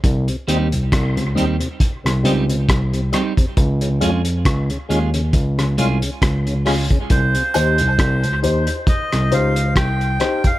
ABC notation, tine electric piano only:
X:1
M:4/4
L:1/16
Q:"Swing 16ths" 1/4=68
K:Cphr
V:1 name="Tine electric piano" clef=bass
C,, z E,, C,, C,, D,, E,, z2 C,, D,,2 C,,2 z2 | D,,2 F,,2 D,, z E,,2 D,,2 C,, z D,,3 z | C,, z E,, C,, C,, D,, E,, z2 C,, D,,2 C,,2 z2 |]